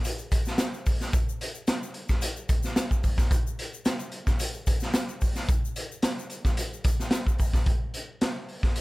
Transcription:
0.04 closed hi-hat loud
0.04 shaker medium
0.19 shaker medium
0.31 kick medium
0.31 closed hi-hat medium
0.31 shaker medium
0.45 snare soft
0.45 shaker medium
0.58 snare loud
0.58 closed hi-hat medium
0.58 shaker medium
0.74 shaker medium
0.86 kick medium
0.86 open hi-hat medium
0.86 shaker medium
1.01 snare soft
1.01 shaker soft
1.13 kick loud
1.13 closed hi-hat medium
1.13 shaker medium
1.29 shaker medium
1.41 closed hi-hat medium
1.55 shaker medium
1.67 snare loud
1.67 closed hi-hat medium
1.67 shaker medium
1.83 shaker medium
1.94 closed hi-hat medium
2.09 kick medium
2.09 snare soft
2.09 shaker medium
2.21 closed hi-hat loud
2.21 shaker medium
2.36 shaker medium
2.49 kick loud
2.49 closed hi-hat medium
2.49 shaker medium
2.63 snare soft
2.63 shaker medium
2.76 snare loud
2.76 closed hi-hat medium
2.76 shaker medium
2.91 kick medium
2.91 shaker medium
3.03 kick medium
3.03 open hi-hat medium
3.03 shaker medium
3.18 kick medium
3.18 snare soft
3.18 shaker medium
3.31 kick loud
3.31 closed hi-hat medium
3.31 shaker medium
3.47 shaker medium
3.59 closed hi-hat medium
3.74 shaker medium
3.85 snare loud
3.85 closed hi-hat medium
3.85 shaker medium
4.00 shaker medium
4.12 closed hi-hat medium
4.27 kick medium
4.27 snare soft
4.27 shaker soft
4.39 closed hi-hat loud
4.39 shaker medium
4.54 shaker medium
4.66 kick medium
4.66 closed hi-hat medium
4.66 shaker medium
4.80 snare soft
4.80 shaker medium
4.94 snare loud
4.94 closed hi-hat medium
4.94 shaker medium
5.09 shaker medium
5.21 kick medium
5.21 open hi-hat medium
5.21 shaker medium
5.35 snare soft
5.35 shaker medium
5.49 kick loud
5.49 closed hi-hat medium
5.49 shaker medium
5.65 shaker medium
5.76 closed hi-hat medium
5.76 shaker medium
5.92 shaker medium
6.02 snare loud
6.02 closed hi-hat loud
6.02 shaker medium
6.19 shaker medium
6.30 closed hi-hat medium
6.30 shaker medium
6.45 kick medium
6.45 snare soft
6.45 shaker medium
6.57 closed hi-hat loud
6.57 shaker medium
6.73 shaker medium
6.84 kick loud
6.84 closed hi-hat medium
6.84 shaker medium
7.00 snare soft
7.00 shaker medium
7.11 snare loud
7.11 closed hi-hat medium
7.11 shaker medium
7.26 kick medium
7.26 shaker medium
7.38 kick medium
7.38 open hi-hat medium
7.38 shaker medium
7.53 kick medium
7.53 snare soft
7.53 shaker medium
7.66 kick loud
7.66 closed hi-hat medium
7.94 closed hi-hat medium
8.21 snare loud
8.21 closed hi-hat medium
8.48 open hi-hat soft
8.63 kick medium
8.63 snare soft
8.76 closed hi-hat loud

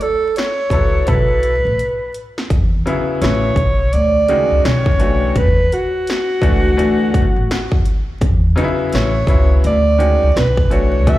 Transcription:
0.01 0.36 A4 medium
0.01 closed hi-hat medium
0.36 1.10 C#5 loud
0.36 snare loud
0.36 closed hi-hat medium
0.70 1.02 C#2 medium
0.70 1.05 F#3 medium
0.70 1.06 B3 medium
0.70 1.06 E4 medium
0.70 1.06 A4 medium
0.70 kick medium
0.70 closed hi-hat medium
1.06 1.58 B1 loud
1.06 1.51 F#3 medium
1.06 1.52 B3 medium
1.06 1.52 E4 medium
1.06 1.52 A4 medium
1.06 2.15 B4 medium
1.06 kick medium
1.06 closed hi-hat medium
1.43 closed hi-hat medium
1.65 1.77 A1 medium
1.79 closed hi-hat medium
2.14 closed hi-hat medium
2.38 snare medium
2.50 2.82 E2 medium
2.50 kick loud
2.50 closed hi-hat medium
2.86 3.20 C#3 medium
2.86 3.20 F#3 medium
2.86 3.21 B3 medium
2.86 3.21 E4 medium
2.86 closed hi-hat medium
3.21 3.53 A1 loud
3.21 3.49 C#3 medium
3.21 3.49 F#3 medium
3.21 3.49 B3 medium
3.21 3.50 E4 medium
3.21 3.95 C#5 loud
3.21 snare loud
3.21 closed hi-hat loud
3.56 3.88 B1 medium
3.56 kick medium
3.56 closed hi-hat medium
3.93 4.44 D2 medium
3.93 4.66 D5 loud
3.93 closed hi-hat medium
4.28 5.31 C#3 medium
4.28 5.30 D#3 medium
4.28 5.30 G#3 medium
4.28 4.99 F#4 medium
4.28 closed hi-hat medium
4.51 4.63 C#2 medium
4.65 5.28 B1 loud
4.65 5.39 C#5 loud
4.65 snare loud
4.65 closed hi-hat medium
4.86 kick medium
4.99 5.44 E3 medium
4.99 5.44 A3 medium
4.99 5.45 D4 medium
4.99 5.45 F#4 medium
4.99 closed hi-hat medium
5.36 5.67 E2 loud
5.36 5.75 B4 loud
5.36 kick loud
5.36 closed hi-hat medium
5.72 7.87 F#4 loud
5.72 closed hi-hat medium
6.07 snare loud
6.07 closed hi-hat medium
6.41 6.74 C#2 medium
6.41 6.70 E3 medium
6.41 6.70 A3 medium
6.41 6.70 D4 medium
6.41 6.70 F#4 medium
6.41 kick medium
6.41 closed hi-hat medium
6.77 7.29 D2 loud
6.77 7.22 E3 medium
6.77 7.22 A3 medium
6.77 7.23 D4 medium
6.77 7.23 F#4 medium
6.77 closed hi-hat medium
7.14 kick medium
7.14 closed hi-hat medium
7.36 7.48 A1 medium
7.51 snare loud
7.51 closed hi-hat medium
7.72 kick medium
7.85 closed hi-hat medium
8.21 8.53 E2 loud
8.21 kick loud
8.21 closed hi-hat medium
8.56 9.10 C#3 medium
8.56 9.10 F#3 medium
8.56 9.10 B3 medium
8.56 8.65 D#4 medium
8.56 closed hi-hat medium
8.64 9.14 E4 medium
8.93 9.25 A1 loud
8.93 9.61 C#5 medium
8.93 snare loud
8.93 closed hi-hat medium
9.27 9.59 C#2 medium
9.27 9.73 C#3 medium
9.27 9.73 F#3 medium
9.27 9.73 B3 medium
9.27 9.73 E4 medium
9.27 kick medium
9.27 closed hi-hat medium
9.64 10.15 D2 loud
9.64 10.39 D5 loud
9.64 closed hi-hat medium
9.98 10.27 D#3 medium
9.98 10.27 G#3 medium
9.98 10.27 C#4 medium
9.98 10.27 F#4 medium
9.98 closed hi-hat medium
10.23 10.35 C#2 medium
10.36 11.07 B1 loud
10.36 10.74 B4 medium
10.36 snare loud
10.36 closed hi-hat medium
10.57 kick loud
10.70 11.05 E3 medium
10.70 11.05 A3 medium
10.70 11.06 D4 medium
10.70 11.07 F#4 medium
10.70 11.11 C#5 loud
10.70 closed hi-hat medium
11.06 11.19 E2 loud
11.06 11.19 E3 medium
11.06 11.19 A3 medium
11.06 11.19 D4 medium
11.06 11.19 F#4 medium
11.06 11.19 E5 loud
11.06 kick loud
11.06 closed hi-hat medium

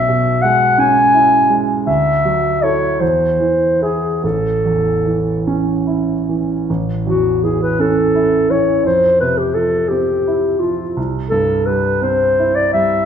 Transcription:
0.00 1.83 B1 soft
0.00 0.44 E5 medium
0.09 0.64 B2 soft
0.42 1.00 G#3 soft
0.42 0.81 F#5 medium
0.78 1.36 C#4 soft
0.78 1.60 G#5 medium
1.14 1.73 E4 soft
1.50 1.87 G#3 soft
1.87 2.97 D2 soft
1.87 2.65 E5 medium
2.25 2.86 F#3 soft
2.63 2.97 E4 soft
2.63 2.98 A4 soft
2.63 3.02 C#5 medium
3.00 4.19 E2 soft
3.00 3.84 C5 soft
3.40 4.06 E3 soft
3.81 4.19 E4 soft
3.81 4.20 G#4 soft
3.81 4.24 G#4 soft
4.24 6.65 A1 soft
4.24 5.45 A4 soft
4.66 5.31 E2 soft
5.06 5.71 E3 soft
5.47 6.12 C#4 soft
5.87 6.53 E4 soft
6.29 6.69 E3 soft
6.70 8.81 A1 soft
7.06 7.64 E2 soft
7.06 7.45 F#4 medium
7.44 8.01 E3 soft
7.44 7.61 G#4 soft
7.62 7.82 B4 soft
7.80 8.36 C#4 soft
7.80 8.52 A4 medium
8.15 8.71 E4 soft
8.50 8.85 E3 soft
8.50 8.85 C#5 medium
8.84 10.93 F2 soft
8.84 9.20 C5 medium
9.20 9.78 C3 soft
9.20 9.40 B4 medium
9.38 9.56 G4 soft
9.55 10.13 F3 soft
9.55 9.90 A4 medium
9.89 10.48 C4 soft
9.89 10.61 G4 medium
10.27 10.83 E4 soft
10.60 10.97 F3 soft
10.60 10.96 F4 soft
10.97 13.04 C2 soft
11.29 11.89 G2 soft
11.29 11.68 A4 medium
11.66 12.24 G3 soft
11.66 12.04 B4 medium
12.02 12.59 C4 soft
12.02 12.57 C5 medium
12.39 12.94 E4 soft
12.55 12.72 D5 medium
12.73 13.05 G3 soft
12.73 13.05 E5 medium

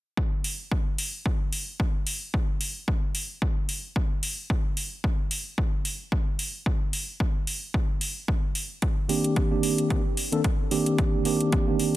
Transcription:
0.17 kick loud
0.44 open hi-hat medium
0.72 kick medium
0.98 open hi-hat medium
1.26 kick loud
1.53 open hi-hat medium
1.80 kick medium
2.07 open hi-hat medium
2.34 kick loud
2.61 open hi-hat loud
2.88 kick loud
3.15 open hi-hat loud
3.42 kick loud
3.69 open hi-hat loud
3.96 kick loud
4.23 open hi-hat loud
4.50 kick loud
4.77 open hi-hat loud
5.04 kick loud
5.31 open hi-hat loud
5.58 kick loud
5.85 open hi-hat loud
6.12 kick loud
6.39 open hi-hat loud
6.66 kick loud
6.93 open hi-hat loud
7.20 kick loud
7.47 open hi-hat medium
7.74 kick loud
8.01 open hi-hat loud
8.28 kick loud
8.55 open hi-hat loud
8.82 kick loud
8.82 closed hi-hat soft
9.08 9.47 D#3 medium
9.08 9.48 A#3 medium
9.08 9.48 C4 medium
9.08 9.48 D4 medium
9.08 9.48 G4 medium
9.08 open hi-hat loud
9.24 closed hi-hat medium
9.36 kick medium
9.36 closed hi-hat soft
9.51 9.87 D#3 medium
9.51 9.87 A#3 medium
9.51 9.87 C4 medium
9.51 9.88 D4 medium
9.51 9.88 G4 medium
9.63 open hi-hat medium
9.78 closed hi-hat medium
9.90 10.01 A#3 medium
9.90 10.01 C4 medium
9.90 10.01 D4 medium
9.90 10.01 G4 medium
9.90 kick loud
9.90 closed hi-hat soft
10.17 open hi-hat loud
10.32 10.41 D#3 medium
10.32 10.41 A#3 medium
10.32 10.41 C4 medium
10.32 10.41 D4 medium
10.32 10.41 A4 medium
10.32 closed hi-hat medium
10.44 kick loud
10.44 closed hi-hat soft
10.71 11.22 D#3 medium
10.71 11.22 A#3 medium
10.71 11.23 C4 medium
10.71 11.23 D4 medium
10.71 11.23 G4 medium
10.71 open hi-hat medium
10.86 closed hi-hat medium
10.98 kick loud
10.98 closed hi-hat soft
11.25 11.64 D#3 medium
11.25 11.64 A#3 medium
11.25 11.64 C4 medium
11.25 11.64 D4 medium
11.25 11.64 G4 medium
11.25 open hi-hat medium
11.41 closed hi-hat medium
11.52 kick medium
11.52 closed hi-hat soft
11.67 11.97 D#3 medium
11.67 11.97 A#3 medium
11.67 11.97 C4 medium
11.67 11.97 D4 medium
11.67 11.97 G4 medium
11.79 open hi-hat medium

